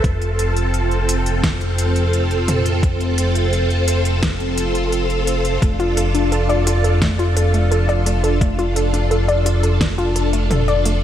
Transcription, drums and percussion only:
0.04 kick, closed hi-hat
0.22 closed hi-hat
0.39 closed hi-hat
0.56 closed hi-hat
0.74 closed hi-hat
0.91 closed hi-hat
1.09 closed hi-hat
1.26 closed hi-hat
1.44 kick, snare, closed hi-hat
1.61 closed hi-hat
1.78 closed hi-hat
1.96 closed hi-hat
2.13 closed hi-hat
2.31 closed hi-hat
2.48 closed hi-hat, mid tom
2.66 closed hi-hat
2.83 kick, closed hi-hat
3.01 closed hi-hat
3.18 closed hi-hat
3.35 closed hi-hat
3.53 closed hi-hat
3.70 closed hi-hat
3.88 closed hi-hat
4.05 closed hi-hat
4.23 kick, snare, closed hi-hat
4.40 closed hi-hat
4.58 closed hi-hat
4.75 closed hi-hat
4.92 closed hi-hat
5.10 closed hi-hat
5.27 closed hi-hat
5.45 closed hi-hat
5.62 kick, closed hi-hat
5.80 closed hi-hat
5.97 closed hi-hat
6.15 closed hi-hat
6.32 closed hi-hat
6.50 closed hi-hat
6.67 closed hi-hat
6.84 closed hi-hat
7.02 kick, snare, closed hi-hat
7.19 closed hi-hat
7.37 closed hi-hat
7.54 closed hi-hat
7.72 closed hi-hat
7.89 closed hi-hat
8.06 closed hi-hat
8.24 closed hi-hat
8.41 kick, closed hi-hat
8.59 closed hi-hat
8.76 closed hi-hat
8.94 closed hi-hat
9.11 closed hi-hat
9.29 closed hi-hat
9.46 closed hi-hat
9.63 closed hi-hat
9.81 kick, snare, closed hi-hat
9.98 closed hi-hat
10.16 closed hi-hat
10.33 closed hi-hat
10.51 closed hi-hat, mid tom
10.68 closed hi-hat
10.85 closed hi-hat

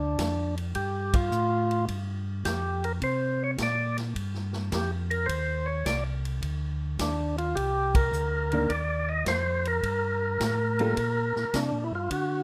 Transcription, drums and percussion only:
0.18 kick, snare, hi-hat pedal, ride
0.58 ride
0.75 kick, ride
1.14 kick, ride
1.32 hi-hat pedal
1.71 ride
1.88 kick, ride
2.45 kick, snare, hi-hat pedal, ride
2.84 ride
3.02 kick, ride
3.58 kick, snare, hi-hat pedal, ride
3.98 snare, ride
4.15 kick, ride
4.34 snare
4.53 snare
4.72 kick, snare, hi-hat pedal, ride
5.11 ride
5.29 kick, ride
5.86 kick, snare, hi-hat pedal, ride
6.25 ride
6.42 kick, ride
6.99 kick, snare, hi-hat pedal, ride
7.38 ride
7.56 kick, ride
7.95 kick, ride
8.13 hi-hat pedal
8.52 ride
8.69 kick, ride
9.26 kick, snare, hi-hat pedal, ride
9.65 ride
9.83 kick, ride
10.40 kick, snare, hi-hat pedal, ride
10.79 ride
10.97 kick, ride
11.36 snare
11.54 kick, snare, hi-hat pedal, ride
12.10 kick, ride

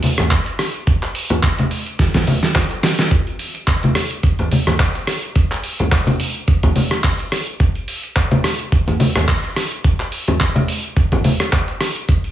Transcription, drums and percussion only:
0.03 open hi-hat, high conga, shaker
0.18 cross-stick, closed hi-hat, low conga, shaker
0.31 kick, clap, closed hi-hat, shaker
0.46 closed hi-hat, shaker
0.59 cross-stick, open hi-hat, shaker
0.74 closed hi-hat, shaker
0.87 kick, closed hi-hat, shaker
1.03 clap, closed hi-hat, shaker
1.15 open hi-hat, shaker
1.30 closed hi-hat, low conga, shaker
1.43 kick, clap, closed hi-hat, shaker
1.59 closed hi-hat, high conga, shaker
1.71 open hi-hat, shaker
1.86 closed hi-hat, shaker
1.99 kick, snare, closed hi-hat, shaker
2.14 kick, snare, open hi-hat, low conga, shaker
2.27 open hi-hat, high conga, shaker
2.43 snare, closed hi-hat, shaker
2.55 kick, snare, clap, closed hi-hat, shaker
2.71 closed hi-hat, shaker
2.83 snare, open hi-hat, shaker
2.99 snare, closed hi-hat, shaker
3.11 kick, closed hi-hat, shaker
3.27 closed hi-hat, shaker
3.39 open hi-hat, shaker
3.55 closed hi-hat, shaker
3.67 kick, clap, closed hi-hat, shaker
3.83 closed hi-hat, high conga, shaker
3.95 cross-stick, open hi-hat, shaker
4.11 closed hi-hat, shaker
4.23 kick, closed hi-hat, shaker
4.39 closed hi-hat, low conga, shaker
4.51 open hi-hat, high conga, shaker
4.66 cross-stick, closed hi-hat, low conga, shaker
4.80 kick, clap, closed hi-hat, shaker
4.95 closed hi-hat, shaker
5.07 cross-stick, open hi-hat, shaker
5.23 closed hi-hat, shaker
5.35 kick, closed hi-hat, shaker
5.51 clap, closed hi-hat, shaker
5.64 open hi-hat, shaker
5.79 closed hi-hat, low conga, shaker
5.92 kick, clap, closed hi-hat, shaker
6.07 closed hi-hat, high conga, shaker
6.20 open hi-hat, shaker
6.35 closed hi-hat, shaker
6.48 kick, closed hi-hat, shaker
6.63 kick, closed hi-hat, low conga, shaker
6.76 open hi-hat, high conga, shaker
6.91 cross-stick, closed hi-hat, shaker
7.04 kick, clap, closed hi-hat, shaker
7.19 closed hi-hat, shaker
7.31 cross-stick, open hi-hat, shaker
7.47 closed hi-hat, shaker
7.60 kick, closed hi-hat, shaker
7.75 closed hi-hat, shaker
7.88 open hi-hat, shaker
8.04 closed hi-hat, shaker
8.16 kick, clap, closed hi-hat, shaker
8.31 closed hi-hat, high conga, shaker
8.44 cross-stick, open hi-hat, shaker
8.60 closed hi-hat, shaker
8.72 kick, closed hi-hat, shaker
8.87 closed hi-hat, low conga, shaker
9.00 open hi-hat, high conga, shaker
9.15 cross-stick, low conga, shaker
9.28 kick, clap, closed hi-hat, shaker
9.44 closed hi-hat, shaker
9.56 cross-stick, open hi-hat, shaker
9.72 closed hi-hat, shaker
9.84 kick, closed hi-hat, shaker
10.00 clap, closed hi-hat, shaker
10.12 open hi-hat, shaker
10.28 closed hi-hat, low conga, shaker
10.40 kick, clap, closed hi-hat, shaker
10.56 closed hi-hat, high conga, shaker
10.68 open hi-hat, shaker
10.84 closed hi-hat, shaker
10.96 kick, closed hi-hat, shaker
11.12 kick, closed hi-hat, low conga, shaker
11.24 open hi-hat, high conga, shaker
11.40 cross-stick, closed hi-hat, shaker
11.53 kick, clap, closed hi-hat, shaker
11.68 closed hi-hat, shaker
11.80 cross-stick, open hi-hat, shaker
11.96 closed hi-hat, shaker
12.09 kick, closed hi-hat, shaker
12.24 closed hi-hat, shaker

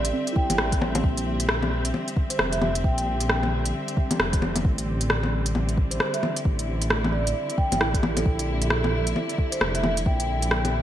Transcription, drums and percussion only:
0.05 closed hi-hat
0.27 closed hi-hat
0.36 kick
0.50 closed hi-hat, low bongo
0.58 cross-stick
0.72 kick, closed hi-hat
0.81 low bongo
0.95 closed hi-hat, low bongo
1.04 kick
1.17 closed hi-hat
1.40 closed hi-hat
1.49 cross-stick
1.63 low bongo
1.85 closed hi-hat
1.94 low bongo
2.08 closed hi-hat
2.17 kick
2.30 closed hi-hat
2.39 cross-stick
2.53 closed hi-hat
2.62 low bongo
2.75 closed hi-hat
2.84 kick
2.98 closed hi-hat
3.20 closed hi-hat
3.29 cross-stick
3.43 low bongo
3.66 closed hi-hat
3.88 closed hi-hat
3.97 kick
4.11 closed hi-hat, low bongo
4.20 cross-stick
4.33 kick, closed hi-hat
4.42 low bongo
4.56 closed hi-hat, low bongo
4.65 kick
4.78 closed hi-hat
5.01 closed hi-hat
5.10 cross-stick
5.23 low bongo
5.46 closed hi-hat
5.55 low bongo
5.69 closed hi-hat
5.78 kick
5.91 closed hi-hat
6.00 cross-stick
6.14 closed hi-hat
6.23 low bongo
6.36 closed hi-hat
6.45 kick
6.59 closed hi-hat
6.82 closed hi-hat
6.90 cross-stick
7.04 low bongo
7.27 closed hi-hat
7.50 closed hi-hat
7.58 kick
7.72 closed hi-hat, low bongo
7.81 cross-stick
7.94 kick, closed hi-hat
8.03 low bongo
8.17 closed hi-hat, low bongo
8.26 kick
8.39 closed hi-hat
8.62 closed hi-hat
8.70 cross-stick
8.84 low bongo
9.07 closed hi-hat
9.16 low bongo
9.29 closed hi-hat
9.38 kick
9.52 closed hi-hat
9.61 cross-stick
9.75 closed hi-hat
9.84 low bongo
9.97 closed hi-hat
10.06 kick
10.20 closed hi-hat
10.42 closed hi-hat
10.51 cross-stick
10.65 closed hi-hat, low bongo

